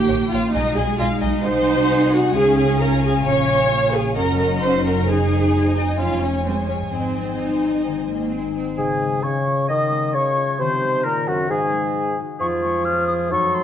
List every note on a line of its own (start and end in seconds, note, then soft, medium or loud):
0.00 0.56 A#2 medium
0.00 0.53 A#3 medium
0.00 0.56 A#3 soft
0.00 0.24 G4 soft
0.00 0.30 G4 medium
0.00 0.31 G5 medium
0.09 0.17 A#1 medium
0.09 0.56 A#4 soft
0.09 0.17 C#5 medium
0.09 0.17 G5 soft
0.25 0.56 G4 medium
0.31 0.40 A#1 medium
0.31 0.53 F4 medium
0.31 0.41 C#5 soft
0.31 0.54 F5 medium
0.31 0.41 G5 soft
0.40 0.56 C#4 soft
0.54 0.63 B1 medium
0.54 1.48 B2 medium
0.54 1.45 G#3 medium
0.54 0.76 D#4 medium
0.54 0.62 D#5 medium
0.54 0.76 D#5 medium
0.54 0.62 G#5 soft
0.72 1.60 G#3 soft
0.76 0.85 B1 medium
0.76 0.99 G#4 medium
0.76 0.86 D#5 medium
0.76 0.99 G#5 medium
0.76 0.86 G#5 medium
0.86 1.14 G#4 soft
0.99 1.08 B1 medium
0.99 1.29 D#4 soft
0.99 1.07 F4 medium
0.99 1.07 D#5 medium
0.99 1.22 F5 medium
0.99 1.07 G#5 medium
1.15 1.89 G#4 soft
1.21 1.31 B1 medium
1.21 1.44 D#4 medium
1.21 1.29 D#5 soft
1.21 1.45 D#5 medium
1.21 1.29 G#5 soft
1.31 2.19 D#4 soft
1.44 2.32 C2 medium
1.44 2.38 C3 medium
1.44 2.35 D#4 medium
1.44 2.12 C5 medium
1.44 2.31 F#5 medium
1.44 4.13 G#5 medium
1.44 2.13 C6 medium
1.61 3.41 G#3 soft
1.76 2.05 F#4 soft
2.06 2.37 F#4 soft
2.12 2.35 F#4 medium
2.12 2.35 F#5 medium
2.21 2.37 D#4 medium
2.35 3.27 C#2 medium
2.35 3.29 C#3 medium
2.35 3.25 C#4 medium
2.35 2.58 G#4 medium
2.35 4.13 F5 medium
2.35 2.57 G#5 medium
2.51 4.02 C#4 soft
2.58 2.81 G#4 medium
2.58 2.80 G#5 medium
2.80 3.04 A#4 medium
2.80 5.10 C#5 soft
2.80 3.03 A#5 medium
2.97 3.71 G#4 soft
3.03 3.14 G#4 medium
3.03 3.26 G#5 medium
3.12 3.57 F4 soft
3.25 4.15 A#1 medium
3.25 4.19 A#2 soft
3.25 3.71 C#4 medium
3.25 3.93 C#5 medium
3.25 3.94 C#6 medium
3.42 4.19 G#3 soft
3.58 3.86 F4 soft
3.72 4.16 A#3 soft
3.72 4.19 G#4 soft
3.87 4.19 F4 soft
3.94 4.17 G#4 medium
3.94 4.17 G#5 medium
4.03 4.92 C#4 soft
4.16 6.00 F#1 medium
4.16 5.07 F#2 medium
4.16 5.06 C#4 medium
4.16 4.38 A#4 medium
4.16 5.04 D#5 medium
4.16 5.04 F#5 soft
4.16 4.38 A#5 medium
4.32 6.01 F#3 soft
4.39 4.48 A#4 medium
4.39 4.62 A#5 medium
4.47 4.77 D#4 soft
4.62 6.02 F#4 soft
4.62 4.84 C5 medium
4.62 4.85 C6 medium
4.78 5.38 D#4 soft
4.85 5.08 A#4 medium
4.85 5.08 A#5 medium
4.93 5.10 C#4 soft
5.06 6.01 F#2 soft
5.06 6.00 D#4 medium
5.06 5.77 G#4 medium
5.06 5.95 C5 soft
5.06 8.52 G#5 medium
5.06 5.77 G#5 medium
5.23 6.13 G#3 soft
5.39 5.67 D#4 soft
5.54 6.29 G#4 soft
5.68 6.01 D#4 soft
5.77 5.99 D#4 medium
5.77 6.00 D#5 medium
5.84 6.01 C4 soft
5.97 6.92 F1 soft
5.97 6.93 F2 soft
5.97 6.45 C#4 medium
5.97 6.22 F4 medium
5.97 6.86 C#5 soft
5.97 6.22 F5 medium
6.14 7.06 G#3 soft
6.22 6.45 C#4 medium
6.22 6.45 C#5 soft
6.30 6.59 G#4 soft
6.45 6.92 G#3 medium
6.45 6.54 C4 medium
6.45 6.75 C#4 soft
6.45 6.69 C5 soft
6.60 7.22 G#4 soft
6.68 6.76 C#4 soft
6.68 6.92 C#5 soft
6.76 6.93 C#4 soft
6.91 8.54 G#1 soft
6.91 8.80 G#2 soft
6.91 7.33 C4 soft
6.91 8.29 C4 soft
6.91 8.32 C5 soft
6.91 8.53 D#5 soft
7.07 8.01 G#3 soft
7.23 7.54 G#4 soft
7.38 8.04 D#4 soft
7.38 7.69 D#4 soft
7.55 8.15 G#4 soft
7.70 8.31 D#4 soft
7.87 8.80 D#3 soft
8.02 9.00 G#3 soft
8.08 8.31 A#3 soft
8.16 8.45 G#4 soft
8.31 8.53 C4 soft
8.31 8.62 D#4 soft
8.47 9.23 G#4 soft
8.55 8.77 C4 soft
8.63 8.80 D#4 soft
8.77 9.20 G#2 soft
8.77 10.62 C#3 soft
8.77 9.25 G#4 soft
8.77 9.24 G#5 medium
9.01 9.90 G#3 soft
9.23 9.68 C#3 soft
9.23 10.14 G#4 soft
9.23 9.68 C#5 medium
9.23 9.67 C#5 medium
9.23 9.69 C#6 medium
9.47 10.36 F4 soft
9.68 10.16 D#3 medium
9.68 10.62 C#4 soft
9.68 10.15 D#5 medium
9.68 10.17 D#5 medium
9.68 10.12 D#6 medium
9.91 10.82 G#3 soft
10.13 10.59 C#3 medium
10.13 11.05 G#4 soft
10.13 10.60 C#5 medium
10.13 10.60 C#5 soft
10.13 10.58 C#6 medium
10.37 10.62 F4 soft
10.59 11.04 C3 medium
10.59 12.43 D#3 soft
10.59 11.06 C5 medium
10.59 11.04 C6 medium
10.84 11.71 G#3 soft
11.04 11.30 A#2 medium
11.04 11.94 G#4 soft
11.04 11.29 A#4 medium
11.04 11.27 A#4 medium
11.04 11.29 A#5 medium
11.27 11.49 F#2 medium
11.27 11.49 F#4 medium
11.27 11.50 F#4 medium
11.27 12.17 F#4 soft
11.27 11.52 F#5 medium
11.49 12.17 G#2 medium
11.49 12.43 D#4 soft
11.49 12.16 G#4 medium
11.49 12.17 G#4 medium
11.49 12.18 G#5 medium
11.73 12.62 G#3 soft
12.18 12.43 F#4 soft
12.39 13.33 F2 soft
12.39 13.32 F3 medium
12.39 12.83 F4 medium
12.39 12.82 G#4 soft
12.39 12.46 C#6 medium
12.63 13.33 G#3 soft
12.63 12.86 C#6 medium
12.85 13.30 F4 medium
12.85 13.33 G#4 soft
12.85 13.63 C#5 soft
12.85 13.07 F6 medium
13.07 13.33 F4 soft
13.07 13.13 D#6 medium
13.31 13.63 F#2 medium
13.31 13.63 F#3 medium
13.31 13.63 D#4 medium
13.31 13.63 A4 medium
13.31 13.56 C#6 medium
13.54 13.63 A3 soft
13.54 13.63 C6 medium